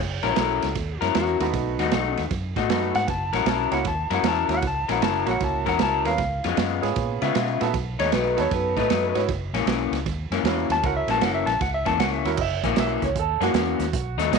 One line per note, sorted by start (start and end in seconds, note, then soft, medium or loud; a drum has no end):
0.00 0.20 F#1 medium
0.23 0.35 A#1 medium
0.23 0.37 F#3 medium
0.23 0.37 C#4 medium
0.23 0.37 E4 medium
0.23 0.36 A#4 medium
0.23 0.39 C#5 medium
0.23 snare soft
0.23 ride medium
0.36 0.59 B1 medium
0.36 0.66 F#3 medium
0.36 0.67 C#4 medium
0.36 0.67 E4 medium
0.36 1.01 A4 medium
0.36 0.67 A#4 medium
0.36 snare loud
0.36 ride medium
0.62 0.74 C#2 medium
0.62 snare soft
0.62 ride medium
0.75 0.97 D#2 medium
0.75 kick loud
0.75 snare soft
0.75 ride medium
1.01 1.13 F#2 medium
1.01 1.15 F#3 medium
1.01 1.15 C#4 medium
1.01 1.14 E4 medium
1.01 1.15 E4 medium
1.01 1.14 A#4 medium
1.01 snare soft
1.01 ride medium
1.15 1.37 E2 medium
1.15 1.44 F#3 medium
1.15 1.45 C#4 medium
1.15 1.45 E4 medium
1.15 1.39 F#4 medium
1.15 1.45 A#4 medium
1.15 snare loud
1.15 ride medium
1.40 1.51 D#2 medium
1.40 1.89 A3 medium
1.40 1.90 B3 medium
1.40 1.90 D#4 medium
1.40 2.15 D#4 medium
1.40 1.90 F#4 medium
1.40 snare soft
1.40 ride medium
1.53 1.75 B1 medium
1.53 kick loud
1.53 snare soft
1.53 ride medium
1.79 1.90 D#2 medium
1.79 1.92 B2 medium
1.79 1.92 A3 medium
1.79 1.92 D#4 medium
1.79 1.92 F#4 medium
1.79 snare soft
1.79 ride medium
1.92 2.15 B1 medium
1.92 2.22 B2 medium
1.92 2.22 A3 medium
1.92 2.22 D#4 medium
1.92 2.22 F#4 medium
1.92 snare loud
1.92 ride medium
2.17 2.29 D#2 medium
2.17 snare soft
2.17 ride medium
2.31 2.53 F#2 medium
2.31 kick medium
2.31 snare soft
2.31 ride medium
2.56 2.68 A2 medium
2.56 2.69 B2 medium
2.56 2.69 A3 medium
2.56 2.70 D#4 medium
2.56 2.70 F#4 medium
2.56 kick medium
2.56 snare soft
2.56 ride soft
2.69 2.91 F#2 medium
2.69 2.99 B2 medium
2.69 3.08 A3 medium
2.69 2.99 A3 medium
2.69 3.08 B3 medium
2.69 3.09 D#4 medium
2.69 3.00 D#4 medium
2.69 3.08 F#4 medium
2.69 3.00 F#4 medium
2.69 snare loud
2.69 ride medium
2.95 3.07 G#2 medium
2.95 3.08 F#5 loud
2.95 snare soft
2.95 ride medium
3.08 3.30 F#1 medium
3.08 3.34 A5 medium
3.08 kick loud
3.08 snare soft
3.08 ride medium
3.32 3.45 A#1 medium
3.32 3.45 F#3 medium
3.32 3.46 C#4 medium
3.32 3.46 E4 medium
3.32 3.47 A#4 medium
3.32 3.47 F#5 medium
3.32 snare soft
3.32 ride medium
3.45 3.68 B1 medium
3.45 3.76 F#3 medium
3.45 3.76 C#4 medium
3.45 3.77 E4 medium
3.45 3.77 A#4 medium
3.45 3.73 A5 medium
3.45 snare loud
3.45 ride medium
3.71 3.83 C#2 medium
3.71 3.84 A#3 medium
3.71 3.84 C#4 medium
3.71 3.84 E4 medium
3.71 3.84 F#4 medium
3.71 3.86 F#5 medium
3.71 snare soft
3.71 ride medium
3.85 4.07 D#2 medium
3.85 4.11 A5 medium
3.85 kick loud
3.85 snare soft
3.85 ride medium
4.10 4.22 F#2 medium
4.10 4.23 F#3 medium
4.10 4.24 C#4 medium
4.10 4.24 E4 medium
4.10 4.24 A#4 medium
4.10 snare soft
4.10 ride medium
4.14 4.26 F#5 medium
4.23 4.46 E2 medium
4.23 4.54 F#3 medium
4.23 4.54 C#4 medium
4.23 4.54 E4 medium
4.23 4.54 A#4 medium
4.23 snare loud
4.23 ride medium
4.28 4.51 A5 medium
4.48 4.61 D#2 medium
4.48 4.61 A#3 medium
4.48 4.62 C#4 soft
4.48 4.61 E4 medium
4.48 4.62 F#4 medium
4.48 snare soft
4.48 ride medium
4.54 4.65 F#5 medium
4.62 4.85 C#2 medium
4.62 kick loud
4.62 snare soft
4.62 ride medium
4.67 4.90 A5 medium
4.88 5.00 A#1 medium
4.88 5.00 F#3 medium
4.88 5.01 C#4 medium
4.88 5.01 E4 medium
4.88 5.01 A#4 medium
4.88 5.03 F#5 medium
4.88 snare soft
4.88 ride medium
5.01 5.23 F#1 medium
5.01 5.31 F#3 medium
5.01 5.31 C#4 medium
5.01 5.31 E4 medium
5.01 5.32 A#4 medium
5.01 5.27 A5 medium
5.01 snare loud
5.01 ride medium
5.26 5.38 A#1 medium
5.26 5.76 A#3 medium
5.26 5.76 C#4 medium
5.26 5.76 E4 medium
5.26 5.77 F#4 medium
5.26 snare soft
5.26 ride medium
5.31 5.42 F#5 medium
5.40 5.63 C#2 medium
5.40 5.67 A5 medium
5.40 kick loud
5.40 snare soft
5.40 ride medium
5.66 5.78 E2 medium
5.66 5.78 F#3 medium
5.66 5.79 C#4 medium
5.66 5.80 E4 medium
5.66 5.79 A#4 medium
5.66 5.80 F#5 medium
5.66 kick medium
5.66 snare soft
5.66 ride soft
5.79 6.02 C#2 medium
5.79 6.09 F#3 medium
5.79 6.09 C#4 medium
5.79 6.09 E4 medium
5.79 6.10 A#4 medium
5.79 6.06 A5 medium
5.79 snare loud
5.79 ride medium
6.05 6.17 D#2 medium
6.05 6.17 B3 medium
6.05 6.17 C#4 medium
6.05 6.17 F4 medium
6.05 6.17 A#4 medium
6.05 6.43 F5 medium
6.05 snare soft
6.05 ride medium
6.18 6.40 C#2 medium
6.18 kick loud
6.18 snare soft
6.18 ride medium
6.44 6.56 F2 medium
6.44 6.57 C#3 medium
6.44 6.58 G#3 medium
6.44 6.58 B3 medium
6.44 6.57 F4 medium
6.44 snare soft
6.44 ride medium
6.57 6.79 F#2 medium
6.57 6.87 C#3 medium
6.57 6.88 G#3 medium
6.57 6.88 B3 medium
6.57 6.88 F4 medium
6.57 snare loud
6.57 ride medium
6.82 6.94 G#2 medium
6.82 7.32 B3 medium
6.82 7.32 C#4 medium
6.82 7.32 F4 medium
6.82 7.32 G#4 medium
6.82 snare soft
6.82 ride medium
6.96 7.18 A#2 medium
6.96 kick loud
6.96 snare soft
6.96 ride medium
7.22 7.33 C#3 medium
7.22 7.35 C#3 medium
7.22 7.35 G#3 medium
7.22 7.35 B3 medium
7.22 7.35 F4 medium
7.22 7.72 E5 medium
7.22 snare soft
7.22 ride medium
7.35 7.57 B2 medium
7.35 7.65 C#3 medium
7.35 7.65 G#3 medium
7.35 7.65 B3 medium
7.35 7.65 F4 medium
7.35 snare loud
7.35 ride medium
7.60 7.72 A#2 medium
7.60 7.72 B3 medium
7.60 7.72 D#4 medium
7.60 7.73 F#4 medium
7.60 7.73 A4 medium
7.60 snare soft
7.60 ride medium
7.73 7.95 B1 medium
7.73 kick loud
7.73 snare soft
7.73 ride medium
7.99 8.11 D#2 medium
7.99 8.12 B2 medium
7.99 8.12 F#3 medium
7.99 8.13 A3 medium
7.99 8.12 D#4 medium
7.99 8.12 C#5 medium
7.99 snare soft
7.99 ride medium
8.12 8.35 B1 medium
8.12 8.42 B2 medium
8.12 8.42 F#3 medium
8.12 8.42 A3 medium
8.12 8.43 D#4 medium
8.12 8.38 B4 medium
8.12 snare loud
8.12 ride medium
8.37 8.50 D#2 medium
8.37 8.87 B3 medium
8.37 8.86 D#4 medium
8.37 8.87 F#4 medium
8.37 8.87 A4 medium
8.37 8.52 C#5 medium
8.37 snare soft
8.37 ride medium
8.51 8.73 F#2 medium
8.51 8.77 B4 medium
8.51 kick medium
8.51 snare soft
8.51 ride medium
8.76 8.88 A2 medium
8.76 8.88 B2 medium
8.76 8.89 F#3 medium
8.76 8.89 A3 medium
8.76 8.90 D#4 medium
8.76 9.29 B4 medium
8.76 kick medium
8.76 snare soft
8.76 ride soft
8.89 9.12 F#2 medium
8.89 9.19 B2 medium
8.89 9.19 F#3 medium
8.89 9.19 A3 medium
8.89 9.20 D#4 medium
8.89 snare loud
8.89 ride medium
9.14 9.27 G#2 medium
9.14 9.27 C#4 medium
9.14 9.27 E4 medium
9.14 9.27 F#4 medium
9.14 9.27 C#5 medium
9.14 snare soft
9.14 ride medium
9.28 9.50 F#1 medium
9.28 kick loud
9.28 snare soft
9.28 ride medium
9.53 9.65 A#1 medium
9.53 9.66 F#2 medium
9.53 9.66 E3 medium
9.53 9.66 A#3 medium
9.53 9.67 C#4 medium
9.53 snare soft
9.53 ride medium
9.66 9.88 B1 medium
9.66 9.96 F#2 medium
9.66 9.97 E3 medium
9.66 9.97 A#3 medium
9.66 9.97 C#4 medium
9.66 snare loud
9.66 ride medium
9.91 10.03 C#2 medium
9.91 snare soft
9.91 ride medium
10.05 10.28 D#2 medium
10.05 kick loud
10.05 snare soft
10.05 ride medium
10.30 10.42 F#2 medium
10.30 10.44 F#2 medium
10.30 10.43 E3 medium
10.30 10.44 A#3 medium
10.30 10.44 C#4 medium
10.30 snare soft
10.30 ride soft
10.43 10.66 E2 medium
10.43 10.74 F#2 medium
10.43 10.74 E3 medium
10.43 10.74 A#3 medium
10.43 10.81 C#4 medium
10.43 10.74 C#4 medium
10.43 10.82 E4 soft
10.43 10.82 F#4 soft
10.43 10.83 A#4 medium
10.43 snare loud
10.43 ride medium
10.69 10.81 D#2 medium
10.69 10.84 A5 medium
10.69 snare soft
10.69 ride medium
10.83 11.05 C#2 medium
10.83 11.42 C#4 medium
10.83 11.42 E4 soft
10.83 11.43 F#4 soft
10.83 11.43 A#4 medium
10.83 10.96 F#5 medium
10.83 kick loud
10.83 snare soft
10.83 ride medium
10.97 11.09 E5 medium
11.07 11.20 A#1 medium
11.07 11.21 F#2 medium
11.07 11.21 E3 medium
11.07 11.21 A#3 medium
11.07 11.22 C#4 medium
11.07 11.22 A5 medium
11.07 snare soft
11.07 ride medium
11.20 11.43 F#1 medium
11.20 11.51 F#2 medium
11.20 11.52 E3 medium
11.20 11.52 A#3 medium
11.20 11.52 C#4 medium
11.20 11.34 F#5 medium
11.20 snare medium
11.20 ride medium
11.35 11.47 E5 medium
11.46 11.58 A#1 medium
11.46 11.60 A5 medium
11.46 snare soft
11.46 ride medium
11.61 11.83 C#2 medium
11.61 11.74 F#5 medium
11.61 kick loud
11.61 snare soft
11.61 ride medium
11.74 11.87 E5 medium
11.85 11.98 E2 medium
11.85 11.97 F#2 medium
11.85 11.98 E3 medium
11.85 11.98 A#3 medium
11.85 11.99 C#4 medium
11.85 11.99 A5 medium
11.85 kick medium
11.85 snare soft
11.85 ride medium
11.98 12.21 C#2 medium
11.98 12.28 F#2 medium
11.98 12.29 E3 medium
11.98 12.29 A#3 medium
11.98 12.29 C#4 medium
11.98 12.12 F#5 medium
11.98 snare loud
11.98 ride medium
12.14 12.38 E5 medium
12.25 12.36 D#2 medium
12.25 12.37 C#4 medium
12.25 12.37 E4 medium
12.25 12.37 F#4 medium
12.25 12.37 A#4 medium
12.25 snare soft
12.25 ride medium
12.37 12.60 F#1 medium
12.37 12.39 D#5 medium
12.37 kick loud
12.37 crash medium
12.41 12.77 E5 medium
12.63 12.75 A#1 medium
12.63 12.76 F#2 medium
12.63 12.76 E3 medium
12.63 12.77 A#3 medium
12.63 12.77 C#4 medium
12.63 kick medium
12.63 snare soft
12.63 closed hi-hat soft
12.76 12.99 B1 medium
12.76 13.06 F#2 medium
12.76 13.06 E3 medium
12.76 13.07 A#3 medium
12.76 13.07 C#4 medium
12.76 13.03 E5 medium
12.76 snare loud
12.76 closed hi-hat medium
13.02 13.14 C#2 medium
13.02 13.16 C#5 medium
13.02 kick medium
13.02 snare soft
13.02 closed hi-hat medium
13.15 13.37 D#2 medium
13.15 kick loud
13.15 closed hi-hat medium
13.19 13.42 A4 medium
13.40 13.52 F#2 medium
13.40 13.52 E3 medium
13.40 13.53 A#3 medium
13.40 13.53 C#4 medium
13.40 14.17 F#4 medium
13.40 snare soft
13.40 closed hi-hat soft
13.53 13.76 E2 medium
13.53 13.83 F#2 medium
13.53 13.83 E3 medium
13.53 13.84 A#3 medium
13.53 13.84 C#4 medium
13.53 snare loud
13.53 closed hi-hat medium
13.79 13.91 D#2 medium
13.79 snare soft
13.79 closed hi-hat medium
13.93 14.15 B1 medium
13.93 kick loud
13.93 snare soft
13.93 closed hi-hat medium
14.17 14.29 D#2 medium
14.17 14.30 B2 medium
14.17 14.30 F#3 medium
14.17 14.31 A3 medium
14.17 14.31 D#4 loud
14.17 snare soft
14.17 closed hi-hat medium
14.31 14.39 B1 loud
14.31 14.39 B2 medium
14.31 14.39 F#3 medium
14.31 14.39 A3 medium
14.31 14.39 D#4 medium
14.31 snare loud
14.31 closed hi-hat medium
14.35 14.39 D#5 medium